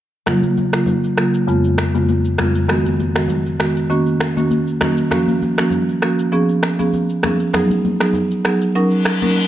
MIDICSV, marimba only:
0, 0, Header, 1, 2, 480
1, 0, Start_track
1, 0, Tempo, 606061
1, 211, Time_signature, 4, 2, 24, 8
1, 7504, End_track
2, 0, Start_track
2, 0, Title_t, "Marimba"
2, 0, Program_c, 0, 12
2, 208, Note_on_c, 0, 49, 91
2, 210, Note_on_c, 0, 54, 82
2, 212, Note_on_c, 0, 58, 78
2, 212, Note_on_c, 0, 65, 100
2, 378, Note_off_c, 0, 49, 0
2, 379, Note_off_c, 0, 54, 0
2, 380, Note_off_c, 0, 58, 0
2, 380, Note_off_c, 0, 65, 0
2, 580, Note_on_c, 0, 49, 70
2, 581, Note_on_c, 0, 54, 66
2, 583, Note_on_c, 0, 58, 65
2, 585, Note_on_c, 0, 65, 82
2, 734, Note_off_c, 0, 49, 0
2, 735, Note_off_c, 0, 54, 0
2, 736, Note_off_c, 0, 58, 0
2, 736, Note_off_c, 0, 65, 0
2, 927, Note_on_c, 0, 49, 69
2, 929, Note_on_c, 0, 54, 65
2, 931, Note_on_c, 0, 58, 66
2, 932, Note_on_c, 0, 65, 80
2, 1097, Note_off_c, 0, 49, 0
2, 1098, Note_off_c, 0, 54, 0
2, 1099, Note_off_c, 0, 58, 0
2, 1100, Note_off_c, 0, 65, 0
2, 1165, Note_on_c, 0, 41, 84
2, 1167, Note_on_c, 0, 49, 80
2, 1168, Note_on_c, 0, 56, 83
2, 1169, Note_on_c, 0, 59, 79
2, 1171, Note_on_c, 0, 65, 97
2, 1337, Note_off_c, 0, 41, 0
2, 1338, Note_off_c, 0, 49, 0
2, 1338, Note_off_c, 0, 56, 0
2, 1338, Note_off_c, 0, 59, 0
2, 1339, Note_off_c, 0, 65, 0
2, 1538, Note_on_c, 0, 41, 69
2, 1539, Note_on_c, 0, 49, 64
2, 1541, Note_on_c, 0, 56, 65
2, 1541, Note_on_c, 0, 59, 66
2, 1542, Note_on_c, 0, 65, 79
2, 1693, Note_off_c, 0, 41, 0
2, 1694, Note_off_c, 0, 49, 0
2, 1694, Note_off_c, 0, 56, 0
2, 1695, Note_off_c, 0, 59, 0
2, 1695, Note_off_c, 0, 65, 0
2, 1887, Note_on_c, 0, 41, 73
2, 1887, Note_on_c, 0, 49, 64
2, 1890, Note_on_c, 0, 56, 68
2, 1890, Note_on_c, 0, 59, 66
2, 1892, Note_on_c, 0, 65, 84
2, 2058, Note_off_c, 0, 41, 0
2, 2058, Note_off_c, 0, 49, 0
2, 2059, Note_off_c, 0, 56, 0
2, 2059, Note_off_c, 0, 59, 0
2, 2060, Note_off_c, 0, 65, 0
2, 2125, Note_on_c, 0, 51, 86
2, 2126, Note_on_c, 0, 56, 78
2, 2127, Note_on_c, 0, 59, 83
2, 2130, Note_on_c, 0, 66, 98
2, 2296, Note_off_c, 0, 51, 0
2, 2297, Note_off_c, 0, 56, 0
2, 2298, Note_off_c, 0, 59, 0
2, 2299, Note_off_c, 0, 66, 0
2, 2496, Note_on_c, 0, 51, 73
2, 2497, Note_on_c, 0, 56, 64
2, 2499, Note_on_c, 0, 59, 65
2, 2501, Note_on_c, 0, 66, 78
2, 2652, Note_off_c, 0, 51, 0
2, 2653, Note_off_c, 0, 56, 0
2, 2654, Note_off_c, 0, 59, 0
2, 2654, Note_off_c, 0, 66, 0
2, 2847, Note_on_c, 0, 51, 72
2, 2850, Note_on_c, 0, 56, 63
2, 2851, Note_on_c, 0, 59, 66
2, 2852, Note_on_c, 0, 66, 79
2, 3017, Note_off_c, 0, 51, 0
2, 3019, Note_off_c, 0, 56, 0
2, 3019, Note_off_c, 0, 59, 0
2, 3020, Note_off_c, 0, 66, 0
2, 3086, Note_on_c, 0, 51, 92
2, 3088, Note_on_c, 0, 58, 81
2, 3089, Note_on_c, 0, 61, 81
2, 3090, Note_on_c, 0, 66, 92
2, 3257, Note_off_c, 0, 51, 0
2, 3258, Note_off_c, 0, 58, 0
2, 3258, Note_off_c, 0, 61, 0
2, 3259, Note_off_c, 0, 66, 0
2, 3460, Note_on_c, 0, 51, 71
2, 3460, Note_on_c, 0, 58, 65
2, 3461, Note_on_c, 0, 61, 65
2, 3464, Note_on_c, 0, 66, 80
2, 3614, Note_off_c, 0, 51, 0
2, 3614, Note_off_c, 0, 58, 0
2, 3615, Note_off_c, 0, 61, 0
2, 3616, Note_off_c, 0, 66, 0
2, 3809, Note_on_c, 0, 51, 75
2, 3810, Note_on_c, 0, 58, 69
2, 3813, Note_on_c, 0, 61, 68
2, 3814, Note_on_c, 0, 66, 80
2, 3979, Note_off_c, 0, 51, 0
2, 3979, Note_off_c, 0, 58, 0
2, 3980, Note_off_c, 0, 61, 0
2, 3981, Note_off_c, 0, 66, 0
2, 4047, Note_on_c, 0, 53, 87
2, 4048, Note_on_c, 0, 58, 81
2, 4050, Note_on_c, 0, 61, 83
2, 4051, Note_on_c, 0, 66, 102
2, 4217, Note_off_c, 0, 53, 0
2, 4218, Note_off_c, 0, 58, 0
2, 4219, Note_off_c, 0, 61, 0
2, 4219, Note_off_c, 0, 66, 0
2, 4420, Note_on_c, 0, 53, 70
2, 4422, Note_on_c, 0, 58, 65
2, 4423, Note_on_c, 0, 61, 66
2, 4424, Note_on_c, 0, 66, 81
2, 4574, Note_off_c, 0, 53, 0
2, 4575, Note_off_c, 0, 58, 0
2, 4576, Note_off_c, 0, 61, 0
2, 4576, Note_off_c, 0, 66, 0
2, 4768, Note_on_c, 0, 53, 68
2, 4770, Note_on_c, 0, 58, 67
2, 4772, Note_on_c, 0, 61, 66
2, 4773, Note_on_c, 0, 66, 79
2, 4938, Note_off_c, 0, 53, 0
2, 4939, Note_off_c, 0, 58, 0
2, 4940, Note_off_c, 0, 61, 0
2, 4940, Note_off_c, 0, 66, 0
2, 5006, Note_on_c, 0, 53, 90
2, 5009, Note_on_c, 0, 59, 79
2, 5010, Note_on_c, 0, 61, 81
2, 5012, Note_on_c, 0, 68, 97
2, 5177, Note_off_c, 0, 53, 0
2, 5178, Note_off_c, 0, 59, 0
2, 5179, Note_off_c, 0, 61, 0
2, 5180, Note_off_c, 0, 68, 0
2, 5378, Note_on_c, 0, 53, 75
2, 5380, Note_on_c, 0, 59, 67
2, 5382, Note_on_c, 0, 61, 67
2, 5384, Note_on_c, 0, 68, 76
2, 5533, Note_off_c, 0, 53, 0
2, 5534, Note_off_c, 0, 59, 0
2, 5535, Note_off_c, 0, 61, 0
2, 5536, Note_off_c, 0, 68, 0
2, 5727, Note_on_c, 0, 53, 72
2, 5728, Note_on_c, 0, 59, 66
2, 5730, Note_on_c, 0, 61, 65
2, 5732, Note_on_c, 0, 68, 81
2, 5898, Note_off_c, 0, 53, 0
2, 5898, Note_off_c, 0, 59, 0
2, 5899, Note_off_c, 0, 61, 0
2, 5900, Note_off_c, 0, 68, 0
2, 5968, Note_on_c, 0, 54, 88
2, 5969, Note_on_c, 0, 59, 79
2, 5970, Note_on_c, 0, 63, 82
2, 5973, Note_on_c, 0, 68, 94
2, 6138, Note_off_c, 0, 54, 0
2, 6139, Note_off_c, 0, 59, 0
2, 6139, Note_off_c, 0, 63, 0
2, 6141, Note_off_c, 0, 68, 0
2, 6343, Note_on_c, 0, 54, 72
2, 6343, Note_on_c, 0, 59, 68
2, 6345, Note_on_c, 0, 63, 69
2, 6348, Note_on_c, 0, 68, 79
2, 6496, Note_off_c, 0, 54, 0
2, 6496, Note_off_c, 0, 59, 0
2, 6497, Note_off_c, 0, 63, 0
2, 6498, Note_off_c, 0, 68, 0
2, 6690, Note_on_c, 0, 54, 76
2, 6691, Note_on_c, 0, 59, 69
2, 6693, Note_on_c, 0, 63, 64
2, 6695, Note_on_c, 0, 68, 82
2, 6859, Note_off_c, 0, 54, 0
2, 6860, Note_off_c, 0, 59, 0
2, 6861, Note_off_c, 0, 63, 0
2, 6861, Note_off_c, 0, 68, 0
2, 6931, Note_on_c, 0, 54, 90
2, 6933, Note_on_c, 0, 61, 80
2, 6935, Note_on_c, 0, 63, 80
2, 6937, Note_on_c, 0, 70, 97
2, 7100, Note_off_c, 0, 54, 0
2, 7100, Note_off_c, 0, 61, 0
2, 7101, Note_off_c, 0, 63, 0
2, 7102, Note_off_c, 0, 70, 0
2, 7301, Note_on_c, 0, 54, 71
2, 7304, Note_on_c, 0, 61, 68
2, 7305, Note_on_c, 0, 63, 65
2, 7306, Note_on_c, 0, 70, 81
2, 7410, Note_off_c, 0, 54, 0
2, 7411, Note_off_c, 0, 61, 0
2, 7412, Note_off_c, 0, 63, 0
2, 7412, Note_off_c, 0, 70, 0
2, 7504, End_track
0, 0, End_of_file